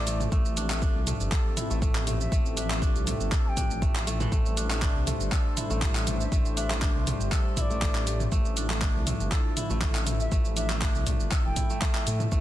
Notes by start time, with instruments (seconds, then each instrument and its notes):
Already playing: detuned saw bass A1, analog synth pad A3 E4 A4 C5, kora D4 E4 A4, bansuri D5
0.07 kora A3, open hi-hat, shaker
0.20 mid tom, shaker
0.32 detuned saw bass A1, analog synth pad F3 C4 G4 A4, kora A3, kick, shaker
0.45 detuned saw bass A1, shaker
0.57 kora D4, open hi-hat, shaker
0.70 kora A3, clap, shaker
0.82 kora D4, kick, shaker
0.95 detuned saw bass C2
1.07 kora A3, mid tom, open hi-hat, shaker
1.20 detuned saw bass G1, shaker
1.32 kora A4, kick, clap, shaker
1.57 kora E4, mid tom, open hi-hat, shaker
1.70 detuned saw bass A1, kora A3, shaker
1.82 kora A3, kick, shaker
1.95 clap
2.07 kora A3, mid tom, open hi-hat, shaker
2.20 bansuri E5, shaker
2.32 detuned saw bass A1, kora A3, kick, shaker
2.45 detuned saw bass A1, shaker
2.57 kora D4, bansuri E5, open hi-hat, shaker
2.70 kora A3, clap, shaker
2.82 kora D4, kick, shaker
2.95 detuned saw bass C2, shaker
3.07 kora A3, mid tom, open hi-hat, shaker
3.20 detuned saw bass G1, shaker
3.32 kora A4, kick, clap, shaker
3.45 bansuri G5 A5
3.57 kora D4, kick, mid tom, open hi-hat, shaker
3.70 detuned saw bass A1, shaker
3.82 kora A3, kick, shaker
3.96 clap, shaker
4.07 kora A3, open hi-hat, shaker
4.20 kora E3, mid tom, shaker
4.32 detuned saw bass A1, analog synth pad G3 D4 C5, kora A3, kick, shaker
4.45 detuned saw bass A1, shaker
4.57 kora D4, open hi-hat, shaker
4.70 kora A3, clap, shaker
4.82 kora D4, kick, clap, shaker
4.95 detuned saw bass C2
5.07 kora A3, mid tom, open hi-hat, shaker
5.20 detuned saw bass G1, shaker
5.32 kora A4, kick, clap, shaker
5.57 kora E4, mid tom, open hi-hat, shaker
5.70 detuned saw bass A1, kora A3, shaker
5.82 kick, clap, shaker
5.95 clap
6.07 kora A3, mid tom, open hi-hat, shaker
6.21 bansuri E5, shaker
6.32 detuned saw bass A1, kora A3, analog synth pad G4, kick, shaker
6.45 detuned saw bass A1, shaker
6.57 kora D4, bansuri E5, open hi-hat, shaker
6.70 kora A3, clap, shaker
6.82 kora D4, kick, clap, shaker
6.95 detuned saw bass C2
7.07 kora A3, mid tom, open hi-hat, shaker
7.20 detuned saw bass G1, shaker
7.32 kora A4, kick, clap, shaker
7.57 kora E4, bansuri E5, kick, mid tom, open hi-hat, shaker
7.61 bansuri D5
7.70 detuned saw bass A1, kora A3, shaker
7.82 kora A3, kick, clap, shaker
7.95 clap
8.07 kora A3, open hi-hat, shaker
8.20 mid tom, shaker
8.32 detuned saw bass A1, analog synth pad D3 F3 A3 E4, kora A3, kick, shaker
8.45 detuned saw bass A1, shaker
8.57 kora D4, open hi-hat, shaker
8.70 kora A3, clap, shaker
8.82 kora D4, kick, clap, shaker
8.95 detuned saw bass C2
9.07 kora A3, mid tom, open hi-hat, shaker
9.20 detuned saw bass G1, shaker
9.32 kora A4, kick, clap, shaker
9.57 kora E4, mid tom, open hi-hat, shaker
9.70 detuned saw bass A1, kora A3, shaker
9.82 kora A3, kick, clap, shaker
9.95 clap
10.07 kora A3, mid tom, open hi-hat, shaker
10.20 bansuri E5, shaker
10.32 detuned saw bass A1, kora A3, kick, shaker
10.45 detuned saw bass A1, shaker
10.57 kora D4, bansuri E5, open hi-hat, shaker
10.70 kora A3, clap, shaker
10.82 kora D4, kick, clap, shaker
10.95 detuned saw bass C2, shaker
11.07 kora A3, kick, mid tom, open hi-hat, shaker
11.20 detuned saw bass G1, shaker
11.32 kora A4, kick, clap, shaker
11.45 detuned saw bass E1, bansuri G5
11.56 kora E4, kick, mid tom, open hi-hat, shaker
11.70 kora A3, shaker
11.82 kora A3, kick, clap, shaker
11.95 clap
12.07 detuned saw bass A2, kora A3, open hi-hat, shaker
12.20 mid tom, shaker
12.32 detuned saw bass A1, kora A3, analog synth pad E4 B4 C5, kick, shaker